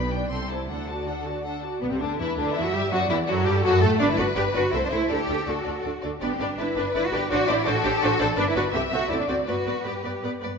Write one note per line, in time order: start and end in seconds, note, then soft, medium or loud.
0.00 0.31 B1 medium
0.00 0.31 B2 medium
0.00 0.13 B3 medium
0.00 0.13 B4 medium
0.00 0.12 B5 medium
0.12 0.31 D4 medium
0.12 0.31 D5 medium
0.12 0.31 G5 medium
0.30 0.68 C2 medium
0.30 0.69 C3 medium
0.30 0.49 C4 medium
0.30 0.49 A4 medium
0.30 0.48 C6 medium
0.50 0.69 E4 medium
0.50 0.69 C5 medium
0.50 0.69 A5 soft
0.69 1.64 D2 medium
0.69 1.64 D3 medium
0.69 0.87 D4 medium
0.69 0.87 A4 medium
0.69 0.87 F#5 medium
0.88 1.08 F#4 soft
0.88 1.07 D5 soft
0.88 1.07 A5 soft
1.07 1.26 D4 soft
1.07 1.27 A4 medium
1.07 1.26 F#5 soft
1.26 1.45 F#4 soft
1.26 1.46 D5 soft
1.26 1.45 A5 soft
1.44 1.63 D4 soft
1.44 1.63 A4 soft
1.44 1.62 F#5 soft
1.63 1.82 F#4 medium
1.63 1.84 D5 soft
1.63 1.82 A5 soft
1.81 1.91 B1 medium
1.81 1.91 B3 medium
1.81 1.86 B3 medium
1.91 1.95 C2 medium
1.91 2.01 C3 medium
1.91 2.00 C4 medium
1.91 2.01 C4 medium
2.00 2.08 D2 medium
2.00 2.20 D3 medium
2.00 2.18 D4 medium
2.00 2.19 D4 medium
2.18 2.26 E2 medium
2.18 2.27 E3 medium
2.18 2.37 E4 medium
2.18 2.53 B4 medium
2.37 2.45 D2 medium
2.37 2.56 D3 medium
2.37 2.55 D4 medium
2.55 2.64 E2 medium
2.55 2.65 E3 medium
2.55 2.65 E4 loud
2.55 2.65 E4 medium
2.55 2.92 E5 medium
2.64 2.73 F#2 medium
2.64 2.74 F#3 medium
2.64 2.74 F#4 medium
2.73 2.92 G2 medium
2.73 2.81 G3 medium
2.73 2.92 G4 medium
2.92 3.10 F#2 loud
2.92 2.99 F#3 loud
2.92 2.99 F#4 loud
2.92 3.10 F#4 loud
2.92 3.29 D5 medium
3.09 3.28 E2 medium
3.09 3.18 E3 medium
3.09 3.17 E4 medium
3.27 3.46 F#2 loud
3.27 3.47 F#3 loud
3.27 3.46 F#4 loud
3.27 3.35 F#4 medium
3.27 4.01 A4 medium
3.46 3.64 G2 loud
3.46 3.65 G3 loud
3.46 3.53 G4 medium
3.46 3.64 G4 loud
3.64 3.83 F#2 loud
3.64 3.72 F#3 loud
3.64 3.82 F#4 loud
3.81 4.01 A2 loud
3.81 4.01 A3 loud
3.81 4.00 A4 loud
3.81 3.89 A4 loud
3.99 4.08 G1 loud
3.99 4.09 D4 loud
3.99 4.09 D4 medium
3.99 4.72 B4 loud
3.99 4.09 B4 medium
3.99 4.07 D5 medium
4.10 4.19 E4 loud
4.17 4.26 G1 medium
4.17 4.26 D4 medium
4.17 4.26 F#4 loud
4.17 4.26 B4 medium
4.17 4.24 D5 medium
4.36 4.44 G1 medium
4.36 4.44 D4 medium
4.36 4.44 G4 loud
4.36 4.44 B4 medium
4.36 4.43 D5 medium
4.54 4.62 G1 medium
4.54 4.62 D4 medium
4.54 4.73 F#4 loud
4.54 4.63 B4 medium
4.54 4.61 D5 medium
4.72 4.81 C2 medium
4.72 4.81 A3 medium
4.72 4.83 E4 loud
4.72 4.81 A4 medium
4.72 5.09 C5 medium
4.72 4.80 E5 medium
4.84 4.87 D4 loud
4.90 4.99 C2 medium
4.90 5.00 A3 medium
4.90 5.10 E4 loud
4.90 5.00 A4 medium
4.90 4.98 E5 medium
5.08 5.18 D2 medium
5.08 5.18 D4 medium
5.08 5.47 G4 loud
5.08 6.03 A4 medium
5.08 5.18 A4 medium
5.08 5.16 D5 medium
5.27 5.36 D2 medium
5.27 5.37 D4 medium
5.27 5.38 A4 medium
5.27 5.35 D5 medium
5.47 5.55 D2 medium
5.47 5.56 D4 medium
5.47 6.04 F#4 medium
5.47 5.56 A4 medium
5.47 5.54 D5 medium
5.64 5.74 D2 medium
5.64 5.75 D4 medium
5.64 5.75 A4 medium
5.64 5.72 D5 soft
5.82 5.92 D2 medium
5.82 5.92 D4 medium
5.82 5.92 A4 medium
5.82 5.90 D5 medium
6.02 6.11 D2 medium
6.02 6.12 D4 medium
6.02 6.12 A4 medium
6.02 6.10 D5 soft
6.19 6.29 G1 medium
6.19 6.30 B3 loud
6.19 6.30 D4 medium
6.19 6.54 G4 medium
6.19 6.30 B4 medium
6.19 6.29 D5 medium
6.32 6.41 C4 medium
6.40 6.48 G1 medium
6.40 6.59 D4 medium
6.40 6.49 D4 medium
6.40 6.48 B4 medium
6.40 6.47 D5 medium
6.56 6.66 G1 medium
6.56 6.67 D4 medium
6.56 6.77 E4 loud
6.56 7.28 B4 medium
6.56 6.67 B4 medium
6.56 6.66 D5 medium
6.77 6.84 G1 medium
6.77 6.95 D4 loud
6.77 6.85 D4 medium
6.77 6.85 B4 medium
6.77 6.84 D5 medium
6.94 7.02 G1 medium
6.94 7.03 D4 medium
6.94 7.03 E4 loud
6.94 7.03 B4 medium
6.94 7.03 D5 medium
7.05 7.14 F#4 loud
7.13 7.21 G1 medium
7.13 7.20 D4 medium
7.13 7.31 G4 loud
7.13 7.20 B4 medium
7.13 7.20 D5 medium
7.30 7.39 A1 medium
7.30 7.39 D4 medium
7.30 7.49 F#4 loud
7.30 7.39 C5 medium
7.30 7.66 D5 loud
7.30 7.38 D5 medium
7.48 7.57 A1 medium
7.48 7.56 D4 medium
7.48 7.66 E4 loud
7.48 7.56 C5 medium
7.48 7.55 D5 medium
7.66 7.74 A1 loud
7.66 7.74 D4 medium
7.66 7.85 F#4 loud
7.66 8.38 A4 loud
7.66 7.74 C5 medium
7.66 7.73 D5 medium
7.83 7.92 A1 medium
7.83 7.92 D4 medium
7.83 8.02 G4 loud
7.83 7.92 C5 medium
7.83 7.91 D5 medium
8.01 8.10 A1 medium
8.01 8.11 D4 medium
8.01 8.21 F#4 loud
8.01 8.11 C5 medium
8.01 8.09 D5 medium
8.20 8.28 A1 loud
8.20 8.27 D4 medium
8.20 8.28 A4 loud
8.20 8.27 C5 medium
8.20 8.27 D5 medium
8.36 8.45 G1 loud
8.36 8.45 D4 medium
8.36 8.47 D4 loud
8.36 8.73 B4 medium
8.36 8.45 B4 medium
8.36 8.44 D5 medium
8.48 8.57 E4 loud
8.56 8.63 G1 medium
8.56 8.64 D4 medium
8.56 8.64 F#4 loud
8.56 8.64 B4 medium
8.56 8.63 D5 medium
8.73 8.82 C2 medium
8.73 8.82 C4 medium
8.73 8.81 G4 loud
8.73 8.82 A4 medium
8.73 9.10 E5 medium
8.73 8.82 E5 medium
8.92 8.99 C2 medium
8.92 9.00 C4 medium
8.92 9.10 F#4 loud
8.92 9.00 A4 medium
8.92 9.01 E5 medium
9.09 9.18 D2 medium
9.09 9.19 C4 medium
9.09 9.14 E4 loud
9.09 9.19 A4 medium
9.09 9.47 D5 medium
9.09 9.18 D5 medium
9.20 9.24 D4 medium
9.28 9.37 D2 medium
9.28 9.37 C4 medium
9.28 9.36 F#4 loud
9.28 9.37 A4 medium
9.28 9.36 D5 medium
9.45 9.55 G2 medium
9.45 9.56 B3 medium
9.45 9.85 F#4 loud
9.45 10.42 B4 medium
9.45 9.56 B4 medium
9.45 9.55 D5 medium
9.66 9.75 G2 medium
9.66 9.74 B3 medium
9.66 9.74 B4 medium
9.66 9.75 D5 soft
9.85 9.94 G2 medium
9.85 9.93 B3 medium
9.85 10.24 G4 medium
9.85 9.93 B4 medium
9.85 9.93 D5 medium
10.04 10.12 G2 medium
10.04 10.12 B3 medium
10.04 10.12 B4 medium
10.04 10.12 D5 soft
10.23 10.31 G2 medium
10.23 10.31 B3 medium
10.23 10.31 B4 medium
10.23 10.31 D5 medium
10.42 10.50 G2 medium
10.42 10.50 B3 medium
10.42 10.50 B4 medium
10.42 10.50 D5 soft